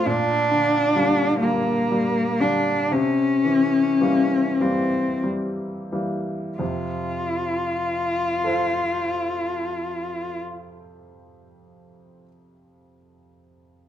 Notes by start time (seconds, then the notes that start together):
0.06 A#2 D4
0.51 D3
0.96 D3 G3 A#3
1.41 D3 G3 A#3
1.91 G3
2.40 D3 G3 A#3 D4
2.91 C3 C#4
3.44 E3
4.01 E3 G3 A#3
4.60 E3 G3 A#3 C4
5.23 G3
5.92 E3 G3 A#3
6.58 F2 C3 F4
8.44 A4 C5 F5